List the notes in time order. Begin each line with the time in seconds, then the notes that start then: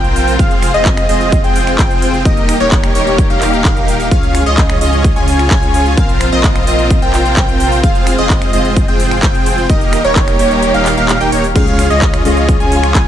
Already playing: A#1 A#2 C3 F3 C4 F4 A#4 C5 G5
0.04 closed hi-hat
0.16 open hi-hat
0.28 open hi-hat
0.39 F1 G#2 C3 C4 F4 G#4 C5 F5, kick, closed hi-hat
0.51 closed hi-hat
0.63 finger snap, open hi-hat
0.74 F1 C4 F4 G#4 C5 D#5, closed hi-hat
0.85 kick, clap, closed hi-hat
0.97 finger snap, closed hi-hat
1.09 F1 C4 F4 G#4 C5 D#5, open hi-hat
1.21 closed hi-hat
1.32 kick, closed hi-hat
1.44 F1 C4 F4 G#4 C5 G5, closed hi-hat
1.56 open hi-hat
1.67 finger snap, closed hi-hat
1.79 F1 C4 F4 G#4 C5 G5, kick, clap, closed hi-hat
1.91 closed hi-hat
2.02 open hi-hat
2.14 closed hi-hat
2.25 D#1 A#2 D#3 G3 A#3 D#4 G4 A#4 D#5, kick, closed hi-hat
2.37 closed hi-hat
2.49 finger snap, open hi-hat
2.60 D#1 A#3 D#4 G4 A#4 C#5, closed hi-hat
2.72 kick, clap, closed hi-hat
2.84 finger snap, closed hi-hat
2.95 D#1 A#3 D#4 G4 A#4 C#5, open hi-hat
3.07 closed hi-hat
3.18 kick, closed hi-hat
3.30 D#1 A#3 D#4 G4 A#4 F5, closed hi-hat
3.41 clap, open hi-hat
3.53 closed hi-hat
3.65 D#1 A#3 G4 A#4 F5, kick, clap, closed hi-hat
3.77 closed hi-hat
3.88 open hi-hat
4.00 open hi-hat
4.11 C#2 G#2 C#3 F3 C#4 F4 C#5 F5, kick, closed hi-hat
4.23 closed hi-hat
4.35 finger snap, open hi-hat
4.46 C#2 C#4 F4 G#4 C#5 D#5, closed hi-hat
4.58 kick, clap, closed hi-hat
4.70 finger snap, closed hi-hat
4.81 C#2 C#4 F4 G#4 C#5 D#5, open hi-hat
4.93 closed hi-hat
5.04 kick, closed hi-hat
5.16 C#2 C#4 F4 G#4 C#5 G#5, closed hi-hat
5.28 open hi-hat
5.39 finger snap, closed hi-hat
5.51 C#2 C#4 F4 G#4 C#5 G#5, kick, clap, closed hi-hat
5.63 closed hi-hat
5.74 open hi-hat
5.86 closed hi-hat
5.97 A#1 A#2 C3 C4 F4 A#4 C5 F5, kick, closed hi-hat
6.09 closed hi-hat
6.21 finger snap, open hi-hat
6.32 A#1 C4 F4 A#4 C5 D#5, closed hi-hat
6.44 kick, clap, closed hi-hat
6.56 finger snap, closed hi-hat
6.67 A#1 C4 F4 A#4 C5 D#5, open hi-hat
6.79 closed hi-hat
6.90 kick, closed hi-hat
7.02 A#1 C4 F4 A#4 C5 G5, closed hi-hat
7.13 clap, open hi-hat
7.25 closed hi-hat
7.37 A#1 C4 A#4 C5 G5, kick, clap, closed hi-hat
7.49 closed hi-hat
7.60 open hi-hat
7.72 open hi-hat
7.83 F1 G#2 C4 F4 G#4 C5 F5, kick, closed hi-hat
7.95 closed hi-hat
8.07 finger snap, open hi-hat
8.18 F1 C4 F4 G#4 C5 D#5, closed hi-hat
8.30 kick, clap, closed hi-hat
8.42 finger snap, closed hi-hat
8.53 F1 C4 F4 G#4 C5 D#5, open hi-hat
8.65 closed hi-hat
8.76 kick, closed hi-hat
8.88 F1 C4 F4 G#4 C5 G5, closed hi-hat
9.00 open hi-hat
9.11 finger snap, closed hi-hat
9.23 F1 F4 G#4 G5, kick, clap, closed hi-hat
9.35 closed hi-hat
9.46 open hi-hat
9.58 closed hi-hat
9.69 D#1 A#2 D#3 G3 A#3 D#4 G4 A#4 D#5, kick, closed hi-hat
9.81 closed hi-hat
9.93 finger snap, open hi-hat
10.04 D#1 A#3 D#4 G4 A#4 C#5, closed hi-hat
10.16 kick, clap, closed hi-hat
10.28 finger snap, closed hi-hat
10.39 D#1 A#3 D#4 G4 A#4 C#5, open hi-hat
10.51 closed hi-hat
10.63 closed hi-hat
10.74 D#1 A#3 D#4 G4 A#4 F5, closed hi-hat
10.86 clap, open hi-hat
10.97 D#1 A#3 D#4 G4 A#4 F5, closed hi-hat
11.09 clap, closed hi-hat
11.21 D#1 A#3 D#4 G4 A#4 G5, closed hi-hat
11.32 D#1 A#3 D#4 G4 A#4 C#5, open hi-hat
11.44 open hi-hat
11.54 C#2 G#2 C#3 F3 G#3 C#4 F4 G#4 C#5 F5, kick, closed hi-hat, crash
11.67 closed hi-hat
11.79 finger snap, open hi-hat
11.90 C#2 C#4 F4 G#4 C#5 D#5, closed hi-hat
12.02 kick, clap, closed hi-hat
12.14 finger snap, closed hi-hat
12.24 C#2 C#3 G#3 C#4 F4 G#4 C#5 D#5, open hi-hat
12.37 closed hi-hat
12.49 kick, closed hi-hat
12.60 C#2 C#4 F4 G#4 C#5 G#5, closed hi-hat
12.72 open hi-hat
12.83 finger snap, closed hi-hat
12.95 C#2 C#4 F4 G#4 C#5 G#5, kick, clap, closed hi-hat